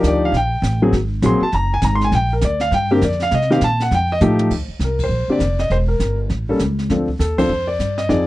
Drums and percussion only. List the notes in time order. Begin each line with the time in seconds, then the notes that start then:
0.04 snare, hi-hat pedal
0.34 brush sweep, snare
0.63 snare, hi-hat pedal
0.93 brush sweep, snare
1.22 snare, hi-hat pedal
1.52 brush sweep, snare
1.82 snare, hi-hat pedal
2.01 snare
2.12 brush sweep, snare
2.41 snare, hi-hat pedal
2.60 snare
2.72 brush sweep, snare
3.02 snare, hi-hat pedal
3.12 snare
3.20 snare
3.21 snare
3.31 brush sweep, snare
3.42 snare
3.52 snare
3.61 snare, hi-hat pedal
3.80 snare
3.91 brush sweep, snare
4.21 hi-hat pedal, mid tom
4.39 mid tom
4.51 brush sweep, kick, snare, crash
4.80 snare, hi-hat pedal
4.99 kick, ride
5.10 brush sweep
5.40 snare, hi-hat pedal
5.59 snare
5.70 brush sweep, snare
6.00 snare, hi-hat pedal
6.29 brush sweep, snare
6.59 snare, hi-hat pedal
6.79 snare
6.89 brush sweep, snare
7.08 kick
7.20 snare, hi-hat pedal
7.38 kick, ride
7.50 brush sweep
7.80 snare, hi-hat pedal
7.98 snare
8.10 brush sweep, snare